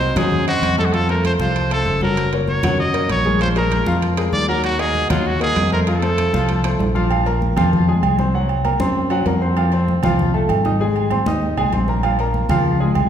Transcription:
Already playing: fingered electric bass C2, grand piano C4 C5 D#5, trumpet C5
0.01 high conga
0.16 fingered electric bass F#2, grand piano F#3 F#4 F#5, trumpet G#4, high conga, low conga, high timbale
0.32 high conga, low conga
0.47 grand piano C4 C5 D#5, trumpet F#4, high conga, high timbale
0.62 fingered electric bass F2, high conga, high timbale
0.78 grand piano A3 A4 C5, trumpet A4, high conga
0.85 trumpet F#4
0.93 grand piano F3 F4 F5, trumpet A4, high conga, high timbale
1.09 grand piano A3 A4 C5, trumpet A#4, high conga, high timbale
1.24 trumpet C5, high conga, high timbale
1.39 fingered electric bass C2, grand piano F3 F4 F5, trumpet C5, high conga
1.55 high conga, high timbale
1.70 grand piano A3 A4 C5, trumpet A4, high conga, high timbale
1.85 fingered electric bass F#1, high conga
2.01 grand piano F#3 F#4 F#5, trumpet A#4, high conga
2.17 high conga, high timbale
2.32 grand piano A#3 A#4 C#5, high conga, high timbale
2.47 trumpet C#5, high conga
2.63 fingered electric bass F#2, grand piano F#3 F#4 F#5, high conga, low conga, high timbale
2.79 trumpet D#5, high conga
2.94 grand piano A#3 A#4 C#5, high conga, high timbale
3.10 fingered electric bass A#1, trumpet C#5, high conga, high timbale
3.25 grand piano G#3 G#4 A#4, high conga
3.40 grand piano F3 F4 F5, trumpet C5, high conga, high timbale
3.56 grand piano G#3 G#4 A#4, trumpet A#4, high conga, high timbale
3.71 high conga, high timbale
3.86 fingered electric bass F2, grand piano F3 F4 F5, high conga
4.02 high conga, high timbale
4.17 grand piano G#3 G#4 A#4, high conga, high timbale
4.33 fingered electric bass D#2, trumpet D5, high conga
4.48 grand piano F#3 F#4 F#5, trumpet A#4
4.64 trumpet F#4, high conga, high timbale
4.79 grand piano A#3 A#4 D#5, trumpet G#4, high conga, high timbale
4.95 high conga
5.10 fingered electric bass D#2, grand piano F#3 F#4 F#5, trumpet F4, high conga, low conga, high timbale
5.26 trumpet F#4, high conga
5.40 grand piano A#3 A#4 D#5, trumpet G#4, high conga, high timbale
5.56 fingered electric bass F2, high conga, high timbale, low timbale
5.71 grand piano A3 A4 C5, trumpet A#4, high conga
5.87 grand piano F3 F4 F5, trumpet A4, high conga, high timbale
6.02 grand piano A3 A4 C5, high conga, high timbale
6.18 high conga, high timbale
6.33 fingered electric bass C2, grand piano F3 F4 F5, high conga
6.49 high conga, high timbale
6.64 grand piano A3 A4 C5, high conga, high timbale
6.79 fingered electric bass A#1, high conga, low timbale
6.95 grand piano F3 F4 F5, high conga
7.11 grand piano F3 F4 F5, high conga, low agogo
7.26 grand piano A#3 A#4 A#5, high conga, low agogo
7.42 high conga
7.57 fingered electric bass F2, grand piano F3 F4 F5, high conga, low conga, low agogo
7.73 high conga, low conga
7.88 grand piano G#3 G#4 G#5, high conga
8.03 fingered electric bass C2, high conga, low agogo
8.18 grand piano C4 C5 C6, high conga, low agogo
8.34 grand piano F#3 F#4 F#5, high conga
8.49 high conga, low agogo
8.64 grand piano A#3 A#4 A#5, high conga, low agogo
8.80 fingered electric bass F#2, grand piano C4 C5 C6, high conga, low agogo
8.96 high conga
9.10 grand piano F#3 F#4 F#5, high conga, low agogo
9.26 fingered electric bass F2, grand piano A#3 A#4 A#5, high conga, low timbale, low agogo
9.41 grand piano C4 C5 C6
9.57 grand piano F3 F4 F5, high conga, low agogo
9.72 grand piano C4 C5 C6, high conga, low agogo
9.88 high conga
10.02 fingered electric bass C2, grand piano F3 F4 F5, high conga, low conga, low agogo
10.19 high conga, low conga
10.34 grand piano A3 A4 A5, high conga
10.49 fingered electric bass G#1, high conga, low agogo
10.65 grand piano D#4 D#5 D#6, high conga, low agogo
10.80 grand piano G#3 G#4 G#5, high conga
10.95 high conga, low agogo
11.11 grand piano C4 C5 C6, high conga, low agogo
11.26 fingered electric bass D#2, grand piano D#4 D#5 D#6, high conga, low agogo
11.42 high conga
11.57 fingered electric bass C2, grand piano G#3 G#4 G#5, high conga, low agogo
11.72 fingered electric bass A#1, grand piano C4 C5 C6, high conga, low agogo
11.88 grand piano A#3 A#4 A#5, high conga
12.03 grand piano F3 F4 F5, high conga, low agogo
12.19 grand piano A#3 A#4 A#5, high conga, low agogo
12.34 high conga
12.49 fingered electric bass C#2, grand piano F3 F4 F5, high conga, low conga, low agogo
12.65 high conga
12.80 grand piano G#3 G#4 G#5, high conga
12.95 fingered electric bass C2, high conga, low agogo

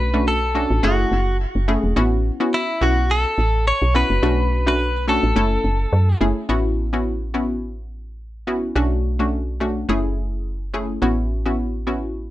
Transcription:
Already playing: fm bass B1, synth pluck A3 C#4 D4 F#4, clean electric guitar B4
0.14 synth pluck A3 C#4 D4 F#4
0.28 clean electric guitar A4
0.55 synth pluck A3 C#4 D4 F#4
0.70 fm bass A1
0.83 fm bass F#1, synth pluck A3 C#4 E4 G#4, clean electric guitar F#4
1.12 fm bass F#1
1.55 fm bass F#1
1.68 synth pluck A3 C#4 E4 G#4
1.84 fm bass E1
1.96 fm bass A1, synth pluck B3 C#4 E4 F#4
2.40 synth pluck B3 C#4 E4 F#4
2.54 clean electric guitar E4
2.81 fm bass B1, synth pluck B3 C#4 E4 F#4, clean electric guitar F#4
3.11 clean electric guitar A4
3.38 fm bass A1
3.68 clean electric guitar C#5
3.82 fm bass B1
3.94 synth pluck B3 C#4 E4 F#4, clean electric guitar B4
4.10 fm bass F#1
4.23 fm bass B1, synth pluck A3 C#4 D4 F#4
4.66 synth pluck A3 C#4 D4 F#4, clean electric guitar B4
5.08 synth pluck A3 C#4 D4 F#4, clean electric guitar A4
5.23 fm bass A1
5.36 fm bass F#1, synth pluck A3 C#4 E4 A4
5.64 fm bass F#1
5.93 fm bass F#2
6.21 fm bass F#1, synth pluck A3 C#4 E4 G#4
6.49 fm bass A1, synth pluck B3 C#4 E4 F#4
6.93 synth pluck B3 C#4 E4 F#4
7.34 synth pluck B3 C#4 E4 F#4
8.47 synth pluck B3 C#4 E4 F#4
8.75 fm bass B1, synth pluck A3 C#4 D4 F#4
9.19 synth pluck A3 C#4 D4 F#4
9.60 synth pluck A3 C#4 D4 F#4
9.89 fm bass F#1, synth pluck A3 C#4 E4 G#4
10.74 synth pluck A3 C#4 E4 G#4
11.02 fm bass A1, synth pluck B3 C#4 E4 F#4
11.46 synth pluck B3 C#4 E4 F#4
11.87 synth pluck B3 C#4 E4 F#4

